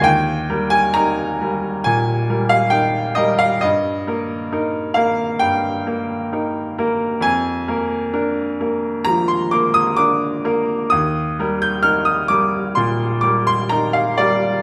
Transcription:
\new Staff \with { instrumentName = "Grand piano" } { \time 4/4 \key ees \major \tempo 4 = 66 << { g''8. aes''16 bes''4 aes''8. f''16 g''8 ees''16 f''16 | ees''4. f''8 g''4. r8 | aes''2 bes''16 c'''16 d'''16 ees'''16 d'''4 | ees'''8. g'''16 f'''16 ees'''16 d'''8 c'''8 d'''16 c'''16 bes''16 f''16 d''8 | } \\ { ees,8 <g bes'>8 <ees' bes'>8 <g bes'>8 bes,8 <g bes'>8 <ees' bes'>8 <g bes'>8 | g,8 <bes bes'>8 <ees' bes'>8 <bes bes'>8 g,8 <bes bes'>8 <ees' bes'>8 <bes bes'>8 | f,8 <bes bes'>8 <d' bes'>8 <bes bes'>8 f8 <bes bes'>8 <d' bes'>8 <bes bes'>8 | ees,8 <g bes'>8 <ees' bes'>8 <g bes'>8 bes,8 <g bes'>8 <ees' bes'>8 <g bes'>8 | } >> }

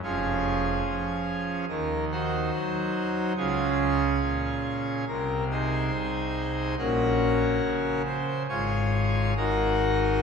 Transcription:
<<
  \new Staff \with { instrumentName = "Pipe organ" } { \time 4/4 \key des \major \tempo 4 = 70 <des' f' aes'>2 bes'8 <ees' ges' c''>4. | <des' f' aes'>2 bes'8 <ees' aes' c''>4. | <des' ges' bes'>4. c''8 <f' aes' des''>4 <ees' ges' bes'>4 | }
  \new Staff \with { instrumentName = "Pipe organ" } { \clef bass \time 4/4 \key des \major <f,, f,>4 f4 <ees, ees>4 ges4 | <des, des>4 bes,4 <c, c>4 c,4 | <bes,, bes,>4 des4 <aes,, aes,>4 <aes,, aes,>4 | }
>>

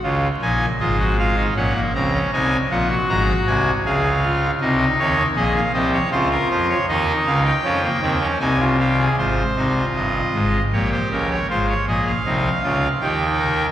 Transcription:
<<
  \new Staff \with { instrumentName = "Pipe organ" } { \time 3/4 \key des \major \tempo 4 = 79 << { r8 aes''8 ees''8 f''8 ges''8 bes''8 | aes''8 ges''8 bes''8 aes''8 f''4 | ees''8 des''8 ees''16 f''16 ees''16 des''16 c''16 bes'16 c''16 des''16 | ees''8 f''16 g''4~ g''16 aes''8 f''8 |
c''4 ees''4 des''16 c''16 bes'16 des''16 | c''16 des''16 ees''16 f''4~ f''16 g''4 | } \\ { f'8 ees'8 f'16 ges'16 f'16 ees'16 des'16 bes16 c'16 des'16 | ees'8 f'16 ges'4~ ges'16 aes'8 f'8 | ees'4 aes'8 g'8 f'4 | ees'4 des'16 bes16 c'16 des'16 ees'16 f'16 g'16 aes'16 |
f'8 ees'16 f'4~ f'16 g'4 | f'8 aes'8 ees'8 f'8 g'8 bes'8 | } >> }
  \new Staff \with { instrumentName = "Pipe organ" } { \clef bass \time 3/4 \key des \major <des, des>8 <bes,, bes,>8 <aes,, aes,>4 <bes,, bes,>8 <des, des>8 | <c, c>8 <bes,, bes,>8 <aes,, aes,>8 <c, c>8 <des, des>4 | <c, c>8 <ees, ees>8 <bes,, bes,>8 <c, c>8 <des, des>8 <f, f>8 | <ees, ees>8 <des, des>8 <f, f>8 <ees, ees>8 <c, c>4 |
<aes,, aes,>8 <c, c>8 <g,, g,>8 <aes,, aes,>8 <bes,, bes,>8 <des, des>8 | <aes,, aes,>8 <bes,, bes,>8 <c, c>8 <des, des>8 <ees, ees>4 | }
>>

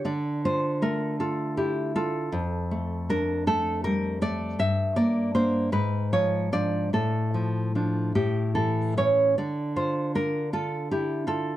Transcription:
\new Staff \with { instrumentName = "Nylon-string guitar" } { \time 6/8 \key d \minor \tempo 4. = 53 << { d''8 c''8 bes'8 a'8 g'8 a'8~ | a'4 bes'8 a'8 bes'8 d''8 | e''8 d''8 c''8 b'8 cis''8 d''8 | a'4. g'8 a'8 cis''8 |
d''8 c''8 bes'8 a'8 g'8 a'8 | } \\ { d8 f'8 a8 f'8 e'8 f'8 | f,8 a8 d'8 a8 g8 a8 | g,8 bes8 <bes d'>8 gis,8 eis8 <eis d'>8 | a,8 f8 <f d'>8 a,8 e8 <e cis'>8 |
d8 f'8 d'8 f'8 e'8 f'8 | } >> }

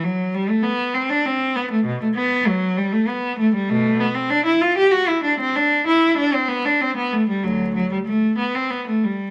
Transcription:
\new Staff \with { instrumentName = "Cello" } { \time 3/4 \key b \phrygian \tempo 4 = 97 fis8 g16 a16 b8 c'16 d'16 c'8 b16 a16 | b,16 a16 b8 fis8 g16 a16 b8 a16 g16 | <b, a>8 b16 c'16 d'16 e'16 f'16 g'16 fis'16 e'16 d'16 c'16 | d'8 e'8 d'16 c'16 b16 d'16 c'16 b16 a16 g16 |
<d, fis>8 fis16 g16 a8 b16 c'16 b16 a16 g8 | }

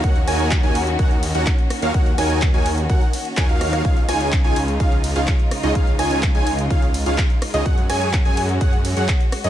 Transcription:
<<
  \new Staff \with { instrumentName = "Analog synth lead" } { \time 4/4 \key ees \minor \tempo 4 = 126 ges''16 r16 aes''8 r16 aes''16 r8 ges''16 r8 ges''16 r8. f''16 | ges''16 r16 aes''8 r16 aes''16 r8 ges''16 r8. aes''16 f''8. | f''16 r16 aes''8 r16 aes''16 r8 f''16 r8 f''16 r8. ees''16 | f''16 r16 aes''8 r16 aes''16 r8 f''16 r8 f''16 r8. ees''16 |
ges''16 r16 aes''8 r16 aes''16 r8 ges''16 r8 ges''16 r8. ees''16 | }
  \new Staff \with { instrumentName = "Supersaw synth" } { \time 4/4 \key ees \minor <ees' ges' bes' des'' ges''>16 r16 <ees' ges' bes' des'' aes''>8 r16 <ees' ges' bes' des'' aes''>16 r8 <ees' ges' bes' des'' ges''>16 r8 <ees' ges' bes' des'' ges''>16 r8. <ees' ges' bes' des'' f''>16 | <ees' ges' bes' des'' ges''>16 r16 <ees' ges' bes' des'' aes''>8 r16 <ees' ges' bes' des'' aes''>16 r8 <ees' ges' bes' des'' ges''>16 r8. <ees' ges' bes' des'' aes''>16 <ees' ges' bes' des'' f''>8. | <ees' f' aes' des'' f''>16 r16 <ees' f' aes' des'' aes''>8 r16 <ees' f' aes' des'' aes''>16 r8 <ees' f' aes' des'' f''>16 r8 <ees' f' aes' des'' f''>16 r8. <ees' f' aes' des'' ees''>16 | <ees' f' aes' des'' f''>16 r16 <ees' f' aes' des'' aes''>8 r16 <ees' f' aes' des'' aes''>16 r8 <ees' f' aes' des'' f''>16 r8 <ees' f' aes' des'' f''>16 r8. <ees' f' aes' des'' ees''>16 |
<aes' des'' ges''>16 r16 <aes' des'' aes''>8 r16 <aes' des'' aes''>16 r8 <aes' des'' ges''>16 r8 <aes' des'' ges''>16 r8. <aes' des'' ees''>16 | }
  \new Staff \with { instrumentName = "String section" } { \time 4/4 \key ees \minor << { <ees des' ges'>1~ | <ees des' ges'>1 | <des ees' f'>1~ | <des ees' f'>1 |
<des' ges'>1 | } \\ { bes1~ | bes1 | aes1~ | aes1~ |
aes1 | } >> }
  \new Staff \with { instrumentName = "Detuned saw bass" } { \clef bass \time 4/4 \key ees \minor ees,8 ees,8. ees,8. ees,8. ees,16 r8. ees,16 | ees,8 ees,8. ees,8. ees,16 r8. ees,16 ees,8. | des,8 des,8. des,8. des,8. des,16 r8. des,16 | des,8 des,8. des,8. des,8. des,16 r8. des,16 |
ges,8 ges,8. ges,8. ges,8. ges,16 r8. ges,16 | }
  \new DrumStaff \with { instrumentName = "Drums" } \drummode { \time 4/4 <hh bd>16 hh16 <hho cymr ss>16 hh16 <hc hh bd>16 hh16 <hho cymr>16 hh16 <hh bd>16 hh16 <hho cymr>16 hh16 <hc hh bd>16 hh16 <hho cymr ss>16 hh16 | <hh bd>16 hh16 <hho cymr ss>16 hh16 <hc hh bd>16 hh16 <hho cymr>16 hh16 <hh bd>16 hh16 <hho cymr>16 hh16 <hc hh bd>16 hh16 <hho cymr ss>16 <hh ss>16 | <hh bd>16 hh16 <hho cymr ss>16 hh16 <hc hh bd>16 hh16 <hho cymr>16 hh16 <hh bd>16 hh16 <hho cymr>16 hh16 <hc hh bd>16 hh16 <hho cymr ss>16 hh16 | <hh bd>16 hh16 <hho cymr ss>16 hh16 <hc hh bd>16 hh16 <hho cymr>16 hh16 <hh bd>16 hh16 <hho cymr>16 hh16 <hc hh bd>16 hh16 <hho cymr ss>16 hh16 |
<hh bd>16 hh16 <hho cymr ss>16 hh16 <hc hh bd>16 hh16 <hho cymr>16 hh16 <hh bd>16 hh16 <hho cymr>16 hh16 <hc hh bd>16 hh16 <hho cymr ss>16 hh16 | }
>>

